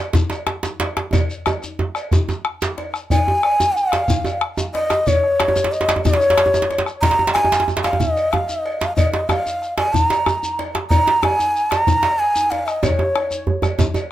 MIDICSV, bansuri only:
0, 0, Header, 1, 2, 480
1, 0, Start_track
1, 0, Key_signature, -5, "major"
1, 0, Tempo, 327690
1, 1663, Time_signature, 12, 3, 24, 8
1, 11729, Tempo, 321543
1, 20845, End_track
2, 0, Start_track
2, 0, Title_t, "Bansuri"
2, 0, Program_c, 0, 73
2, 4562, Note_on_c, 0, 80, 119
2, 5515, Note_on_c, 0, 77, 104
2, 5537, Note_off_c, 0, 80, 0
2, 6477, Note_off_c, 0, 77, 0
2, 6937, Note_on_c, 0, 75, 105
2, 7436, Note_on_c, 0, 73, 99
2, 7458, Note_off_c, 0, 75, 0
2, 8376, Note_on_c, 0, 75, 98
2, 8398, Note_off_c, 0, 73, 0
2, 8836, Note_off_c, 0, 75, 0
2, 8845, Note_on_c, 0, 73, 111
2, 9992, Note_off_c, 0, 73, 0
2, 10272, Note_on_c, 0, 82, 123
2, 10728, Note_off_c, 0, 82, 0
2, 10743, Note_on_c, 0, 80, 116
2, 11201, Note_off_c, 0, 80, 0
2, 11477, Note_on_c, 0, 77, 106
2, 11718, Note_on_c, 0, 75, 107
2, 11740, Note_off_c, 0, 77, 0
2, 12199, Note_on_c, 0, 77, 98
2, 12222, Note_off_c, 0, 75, 0
2, 12443, Note_on_c, 0, 75, 100
2, 12465, Note_off_c, 0, 77, 0
2, 12923, Note_on_c, 0, 77, 100
2, 12946, Note_off_c, 0, 75, 0
2, 13144, Note_off_c, 0, 77, 0
2, 13153, Note_on_c, 0, 75, 93
2, 13389, Note_off_c, 0, 75, 0
2, 13398, Note_on_c, 0, 75, 88
2, 13637, Note_on_c, 0, 77, 100
2, 13659, Note_off_c, 0, 75, 0
2, 14360, Note_off_c, 0, 77, 0
2, 14369, Note_on_c, 0, 80, 101
2, 14605, Note_on_c, 0, 82, 96
2, 14627, Note_off_c, 0, 80, 0
2, 15577, Note_off_c, 0, 82, 0
2, 16042, Note_on_c, 0, 82, 115
2, 16538, Note_on_c, 0, 80, 114
2, 16561, Note_off_c, 0, 82, 0
2, 17246, Note_on_c, 0, 82, 123
2, 17269, Note_off_c, 0, 80, 0
2, 17972, Note_on_c, 0, 80, 107
2, 17994, Note_off_c, 0, 82, 0
2, 18446, Note_on_c, 0, 77, 97
2, 18468, Note_off_c, 0, 80, 0
2, 18690, Note_on_c, 0, 75, 96
2, 18713, Note_off_c, 0, 77, 0
2, 18937, Note_on_c, 0, 73, 89
2, 18960, Note_off_c, 0, 75, 0
2, 19893, Note_off_c, 0, 73, 0
2, 20845, End_track
0, 0, End_of_file